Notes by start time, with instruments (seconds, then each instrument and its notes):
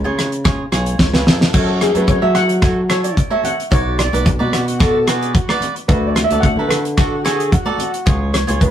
Already playing: steel pan C#5
0.04 fingered electric bass C#3, cavaquinho F4 G#4 C#5, high conga
0.19 cross-stick, closed hi-hat, low conga
0.32 closed hi-hat
0.44 cavaquinho F4 G#4 C#5, kick, cross-stick, closed hi-hat, high conga
0.72 fingered electric bass B1, cavaquinho F4 G#4 C#5, cross-stick, closed hi-hat
0.86 closed hi-hat
0.99 fingered electric bass C#2, steel pan C#5, kick, snare
1.13 cavaquinho F4 G#4 C#5, steel pan B4, snare, high conga
1.27 fingered electric bass F2, steel pan A4, snare, low conga
1.36 steel pan A4
1.41 steel pan A4, snare
1.50 fingered electric bass F#2, cavaquinho F#4 A4 C#5, steel pan A4, kick, closed hi-hat, crash
1.59 steel pan A4
1.68 steel pan A4
1.81 steel pan G#4, cross-stick, closed hi-hat, low conga
1.95 fingered electric bass F#2, cavaquinho F#4 A4 C#5, steel pan B4, closed hi-hat, high conga
2.08 steel pan C#5, kick, closed hi-hat, low conga
2.22 fingered electric bass F#3, cavaquinho F#4 A4 C#5, steel pan E5, high conga
2.35 steel pan F#5, cross-stick, closed hi-hat, low conga
2.49 closed hi-hat
2.62 cavaquinho F#4 A4 C#5, kick, cross-stick, closed hi-hat
2.89 cavaquinho F#4 A4 C#5, steel pan C#5, cross-stick, closed hi-hat
3.04 steel pan D5, closed hi-hat
3.17 kick, closed hi-hat
3.30 cavaquinho F#4 A4 C#5, steel pan E5, high conga
3.44 steel pan F#5, closed hi-hat, low conga
3.60 closed hi-hat
3.71 fingered electric bass B1, cavaquinho F#4 B4 D5, steel pan C#5, kick, closed hi-hat
3.98 steel pan D5, cross-stick, closed hi-hat, low conga
4.13 fingered electric bass B1, cavaquinho F#4 B4 D5, steel pan B4, closed hi-hat, high conga
4.25 kick, closed hi-hat, low conga
4.39 fingered electric bass B2, cavaquinho F#4 B4 D5, high conga
4.52 horn section F#4, cross-stick, closed hi-hat, low conga
4.68 closed hi-hat
4.79 cavaquinho F#4 B4 D5, horn section A4, kick, cross-stick, closed hi-hat
5.06 cavaquinho F#4 B4 D5, horn section G#4, cross-stick, closed hi-hat
5.22 closed hi-hat
5.34 horn section F#4, kick, closed hi-hat
5.49 cavaquinho F#4 B4 D5, cross-stick, high conga
5.61 closed hi-hat, low conga
5.76 closed hi-hat
5.88 fingered electric bass D2, cavaquinho F#4 A4 D5, steel pan B4, kick, closed hi-hat
6.07 steel pan D5
6.15 cross-stick, closed hi-hat, low conga
6.24 steel pan E5
6.29 fingered electric bass D2, cavaquinho F#4 A4 D5, closed hi-hat, high conga
6.41 steel pan F#5, kick, closed hi-hat, low conga
6.56 fingered electric bass D3, cavaquinho F#4 A4 B4, high conga
6.68 steel pan B4, cross-stick, closed hi-hat, low conga
6.85 closed hi-hat
6.97 cavaquinho F#4 A4 D5, horn section F#4, kick, cross-stick, closed hi-hat
7.24 cavaquinho F#4 A4 C#5, horn section G#4, cross-stick, closed hi-hat
7.40 closed hi-hat
7.52 horn section F#4, kick, closed hi-hat
7.66 cavaquinho F#4 A4 D5, high conga
7.78 closed hi-hat, low conga
7.94 closed hi-hat
8.06 fingered electric bass C#2, cavaquinho F4 G#4 C#5, kick, closed hi-hat
8.34 steel pan C#5, cross-stick, closed hi-hat
8.47 fingered electric bass C#2, cavaquinho F4 G#4 C#5, closed hi-hat, high conga
8.61 steel pan B4, kick, closed hi-hat, low conga